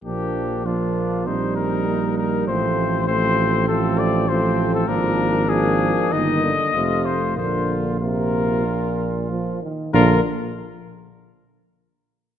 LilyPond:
<<
  \new Staff \with { instrumentName = "Cornet" } { \time 4/4 \key bes \major \tempo 4 = 97 g'4 f'4 c''8 bes'4 bes'8 | c''4 c''4 a'8 d''8 c''8. a'16 | bes'4 aes'4 ees''4. c''8 | c''8. r16 bes'2 r4 |
bes'8 r2. r8 | }
  \new Staff \with { instrumentName = "Trumpet" } { \time 4/4 \key bes \major d'4 d'4 ees'2 | c'4 c'4 c'4 c'4 | d'4 d'4 ees'8 r8 f'4 | f'4 f'2~ f'8 r8 |
f'8 r2. r8 | }
  \new Staff \with { instrumentName = "French horn" } { \time 4/4 \key bes \major bes4 bes4 c'4 bes4 | a4 a4 a4 a4 | bes4 bes4 bes8 r8 a4 | bes4 bes2~ bes8 r8 |
bes8 r2. r8 | }
  \new Staff \with { instrumentName = "Euphonium" } { \clef bass \time 4/4 \key bes \major f4 f4 g2 | f4 f4 f4 f4 | f4 f4 ees8 d8 c8 r8 | d4 c4 bes,4 f8 ees8 |
d8 r2. r8 | }
  \new Staff \with { instrumentName = "Tuba" } { \clef bass \time 4/4 \key bes \major bes,,2 bes,,2 | a,,1 | aes,,2 g,,8 r8 f,,4 | bes,,2.~ bes,,8 r8 |
bes,,8 r2. r8 | }
>>